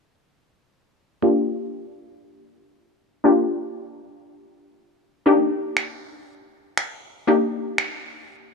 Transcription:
1.22 A#3 D4 F4 G4
3.24 A#3 D4 F4 G4
5.26 A#3 D4 D#4 G4
5.77 finger snap
6.77 finger snap
7.27 A#3 D4 D#4 G4
7.78 finger snap

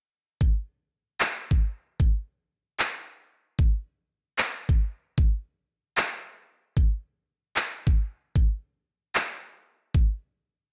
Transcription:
0.41 kick
1.20 clap
1.51 kick
2.00 kick
2.79 clap
3.59 kick
4.38 clap
4.69 kick
5.18 kick
5.97 clap
6.77 kick
7.56 clap
7.87 kick
8.36 kick
9.15 clap
9.95 kick

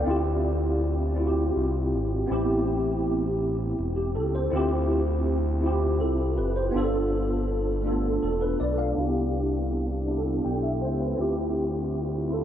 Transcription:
Already playing: G5
0.04 D2 C4 E4 F4
0.10 G4
1.15 C4 E4 F4
1.20 F#4
1.27 G4
1.56 C2
1.93 G#1
2.26 B3 C4 E4
2.31 A1 G4
3.79 E1
3.96 G4
4.15 C#2 A4
4.35 C5
4.50 D2 C4 E4 F4
4.56 G4
5.60 C4 E4 F4
5.66 G4
6.00 C2 A4
6.38 F#1 B4
6.56 C5
6.71 G1 B3 D4 F4
6.77 A4
7.82 A3 D4 F4
7.87 B3 A4
8.22 E1 A4
8.41 B4
8.60 B1 D5
8.78 F5
8.94 C2 B3 D4 E4
8.99 F#4
9.06 G4
10.05 B3 D4 E4
10.10 G4
10.17 A4
10.45 B1 G5
10.63 E5
10.81 C#2 C5
11.00 B4
11.15 D2 C4 E4
11.19 F4 G4
12.27 C4 E4 F4
12.33 A4

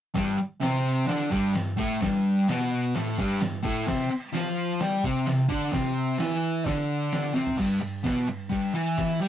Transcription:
0.14 G2 G3, kick, snare, open hi-hat
0.39 muted distorted electric guitar stroke
0.61 C3 C4, snare, open hi-hat
1.07 D3 D4, snare, open hi-hat
1.30 G2 G3, kick
1.55 G2, snare, open hi-hat
1.77 A2 A3, kick
2.01 G2 G3, kick, snare, open hi-hat
2.48 B2 B3, snare, open hi-hat
2.95 A2 A3, snare, open hi-hat
3.18 G2 G3, kick
3.41 G2, snare, open hi-hat
3.63 A2 A3, kick
3.87 C3 C4, kick, snare, crash
4.11 muted distorted electric guitar stroke
4.33 F3 F4, snare, open hi-hat
4.80 G3 G4, snare, open hi-hat
5.04 C3 C4, kick
5.27 C3, snare, open hi-hat
5.48 D3 D4, kick
5.72 C3 C4, kick, snare, open hi-hat
6.18 E3 E4, snare, open hi-hat
6.66 D3 D4, kick, snare, open hi-hat
7.12 snare, open hi-hat
7.34 C3 C4, snare
7.47 floor tom
7.57 G2 G3, kick, crash
7.81 G2
8.04 B2 B3, kick, snare, crash
8.27 G2
8.49 G2 G3, kick, crash
8.73 E3 E4
8.97 kick, snare, crash
9.20 G3 G4

